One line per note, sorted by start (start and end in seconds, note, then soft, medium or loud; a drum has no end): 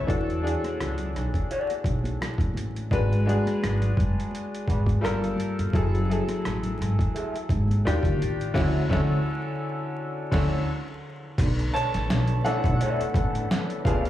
0.00 0.10 B4 medium
0.00 0.26 C#5 medium
0.00 0.10 E5 medium
0.07 0.53 E2 medium
0.07 0.35 E3 medium
0.07 0.35 D4 medium
0.07 0.35 F#4 medium
0.07 0.36 A4 medium
0.07 kick loud
0.07 closed hi-hat medium
0.07 muted conga soft
0.27 closed hi-hat soft
0.27 muted conga soft
0.42 1.49 E3 medium
0.42 1.50 D4 medium
0.42 1.50 F#4 medium
0.42 1.50 G#4 medium
0.47 closed hi-hat medium
0.63 cross-stick soft
0.63 closed hi-hat soft
0.63 high conga medium
0.80 1.15 C#2 medium
0.80 cross-stick medium
0.80 closed hi-hat medium
0.98 closed hi-hat soft
0.98 muted conga soft
0.98 low conga medium
1.14 1.30 B1 medium
1.14 cross-stick soft
1.14 closed hi-hat medium
1.14 low conga medium
1.34 kick medium
1.34 closed hi-hat soft
1.51 1.71 F#4 medium
1.51 1.72 A4 medium
1.51 1.72 D5 medium
1.51 closed hi-hat medium
1.70 closed hi-hat soft
1.70 muted conga soft
1.84 2.14 B1 medium
1.84 kick medium
1.84 closed hi-hat medium
2.04 closed hi-hat soft
2.04 high conga medium
2.21 cross-stick loud
2.21 closed hi-hat medium
2.21 muted conga soft
2.38 2.52 A1 medium
2.38 kick medium
2.38 closed hi-hat soft
2.38 low conga soft
2.54 2.93 A1 medium
2.54 closed hi-hat medium
2.54 high conga medium
2.76 closed hi-hat soft
2.91 3.36 G#1 medium
2.91 3.18 G#3 medium
2.91 3.19 D4 medium
2.91 3.19 F#4 medium
2.91 3.19 B4 medium
2.91 kick loud
2.91 closed hi-hat medium
3.09 closed hi-hat soft
3.09 muted conga soft
3.26 4.33 G#3 medium
3.26 4.33 D4 medium
3.26 4.33 F#4 medium
3.26 4.34 G#4 medium
3.26 closed hi-hat medium
3.46 cross-stick soft
3.46 closed hi-hat soft
3.46 high conga medium
3.62 3.91 G#1 medium
3.62 cross-stick medium
3.62 closed hi-hat medium
3.62 muted conga soft
3.82 closed hi-hat soft
3.82 muted conga soft
3.82 low conga medium
3.97 4.13 F#1 medium
3.97 kick medium
3.97 closed hi-hat medium
3.97 low conga medium
4.20 closed hi-hat soft
4.31 closed hi-hat medium
4.31 muted conga soft
4.55 closed hi-hat soft
4.68 4.97 G#1 medium
4.68 4.85 F#4 medium
4.68 4.85 B4 medium
4.68 4.85 D5 medium
4.68 kick medium
4.68 closed hi-hat medium
4.86 kick medium
4.86 closed hi-hat soft
4.86 high conga medium
5.01 5.59 G3 medium
5.01 5.24 A#3 medium
5.01 5.60 F4 medium
5.01 5.24 F4 medium
5.01 5.60 A4 medium
5.01 5.25 A4 medium
5.01 5.61 A#4 loud
5.01 cross-stick loud
5.01 muted conga soft
5.05 5.33 G1 medium
5.05 closed hi-hat medium
5.22 closed hi-hat soft
5.22 low conga soft
5.36 closed hi-hat medium
5.36 high conga medium
5.59 5.72 G1 medium
5.59 closed hi-hat soft
5.73 6.18 F#1 loud
5.73 6.00 F#3 medium
5.73 6.01 E4 medium
5.73 6.01 G#4 medium
5.73 6.02 A4 loud
5.73 kick loud
5.73 closed hi-hat medium
5.91 closed hi-hat soft
5.91 muted conga soft
6.09 7.15 F#3 medium
6.09 7.16 E4 medium
6.09 7.16 G#4 medium
6.09 7.17 A4 medium
6.09 closed hi-hat medium
6.27 cross-stick soft
6.27 closed hi-hat medium
6.27 high conga medium
6.45 6.74 A1 medium
6.45 cross-stick loud
6.45 closed hi-hat medium
6.63 closed hi-hat soft
6.63 muted conga soft
6.63 low conga medium
6.78 6.96 G#1 medium
6.78 cross-stick soft
6.78 closed hi-hat medium
6.78 low conga medium
6.99 kick medium
6.99 closed hi-hat soft
7.15 7.35 A3 medium
7.15 7.36 E4 medium
7.15 7.36 G#4 medium
7.15 closed hi-hat medium
7.34 closed hi-hat soft
7.34 muted conga soft
7.49 7.79 G#1 medium
7.49 kick loud
7.49 closed hi-hat medium
7.68 closed hi-hat soft
7.68 high conga medium
7.85 8.01 D#2 loud
7.85 8.43 D#3 medium
7.85 8.43 D4 medium
7.85 8.43 F4 medium
7.85 8.44 G4 loud
7.85 cross-stick loud
7.85 closed hi-hat medium
8.03 8.17 D2 loud
8.03 kick medium
8.03 closed hi-hat soft
8.03 muted conga soft
8.03 low conga medium
8.18 8.50 A1 medium
8.18 high conga medium
8.22 closed hi-hat medium
8.41 closed hi-hat soft
8.54 8.81 D2 loud
8.54 8.79 D3 loud
8.54 8.79 C#4 loud
8.54 8.80 E4 loud
8.54 8.81 E4 medium
8.54 8.80 F#4 loud
8.54 8.81 F#4 medium
8.54 kick loud
8.54 snare loud
8.54 crash medium
8.58 8.82 C#5 medium
8.89 9.16 D2 loud
8.89 9.15 D3 medium
8.89 9.15 C#4 medium
8.89 9.16 E4 medium
8.89 9.16 F#4 medium
8.89 9.16 A4 medium
8.89 kick loud
8.89 snare loud
8.94 9.17 C#5 medium
10.31 10.57 D2 loud
10.31 10.56 D3 medium
10.31 10.57 C#4 medium
10.31 10.57 E4 medium
10.31 10.58 E4 medium
10.31 10.58 F#4 loud
10.31 10.58 A4 medium
10.31 10.58 C#5 medium
10.31 kick loud
10.31 snare loud
10.31 crash medium
11.38 11.67 B1 loud
11.38 13.83 D3 medium
11.38 13.83 A3 medium
11.38 14.10 B3 medium
11.38 kick loud
11.38 closed hi-hat loud
11.38 crash loud
11.59 closed hi-hat soft
11.74 12.40 C#5 medium
11.74 12.46 A5 loud
11.74 closed hi-hat medium
11.94 12.11 A1 medium
11.94 snare soft
11.94 closed hi-hat medium
12.10 12.38 B1 loud
12.10 snare loud
12.10 closed hi-hat medium
12.28 closed hi-hat soft
12.44 13.46 A3 medium
12.44 13.46 C#4 soft
12.44 13.46 D4 medium
12.44 12.61 E4 medium
12.44 13.47 E4 medium
12.44 12.61 A4 medium
12.44 13.82 A4 medium
12.44 12.62 D5 medium
12.44 13.81 F#5 loud
12.44 snare soft
12.44 closed hi-hat medium
12.64 12.77 B1 loud
12.64 kick medium
12.64 closed hi-hat soft
12.81 13.01 E4 medium
12.81 13.02 A4 medium
12.81 13.02 D5 medium
12.81 closed hi-hat medium
13.01 muted upright bass stroke soft
13.01 closed hi-hat medium
13.14 13.44 A1 medium
13.14 kick loud
13.14 closed hi-hat medium
13.35 closed hi-hat soft
13.51 snare loud
13.51 closed hi-hat medium
13.70 closed hi-hat soft
13.84 14.10 C#2 medium
13.84 14.10 C#3 medium
13.84 14.10 A3 medium
13.84 14.02 B3 medium
13.84 14.10 B3 medium
13.84 14.10 D4 medium
13.84 14.10 D4 soft
13.84 14.10 F4 medium
13.84 14.03 F4 medium
13.84 14.10 F4 medium
13.84 14.10 G#4 medium
13.84 14.03 A4 medium
13.84 14.10 F5 medium
13.84 kick loud
13.84 closed hi-hat medium
14.05 closed hi-hat soft